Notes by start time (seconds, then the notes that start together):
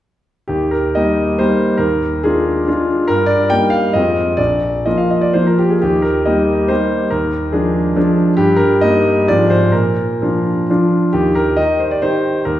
0.48 D#2 G4
0.71 A#4
0.95 G3 A#3 D#4 D#5
1.39 G3 A#3 D#4 C5
1.78 D#2 A#4
2.23 G#3 D4 F4 G#4
2.67 G#3 D4 F4
3.08 G2 A#4
3.26 D5
3.50 G3 A#3 D#4 G5
3.70 F5
3.93 F2 G#3 C4 F4 D#5
4.37 A#1 D5
4.86 F3 A#3 F4 D#5
4.98 F5
5.10 D#5
5.21 D5
5.33 F3 A#3 F4 C5
5.47 A#4
5.59 G4
5.70 G#4
5.82 D#2 G4
6.02 A#4
6.25 G3 A#3 D#4 D#5
6.68 G3 A#3 D#4 C5
7.10 D#2 A#4
7.52 F3 G#3 D4 G#4
7.96 F3 G#3 D4
8.37 G2 G4
8.56 A#4
8.81 G3 A#3 D#4 D#5
9.28 G#2 F3 C4 F4 D5
9.50 C5
9.72 A#2 A#4
10.22 F3 D4 F4
10.70 F3 D4 F4
11.13 D#2 G4
11.35 A#4
11.57 D#3 D#4 G4 D#5
11.80 C5
11.91 D5
12.02 D#3 D#4 G4 C5
12.45 D#2 A#4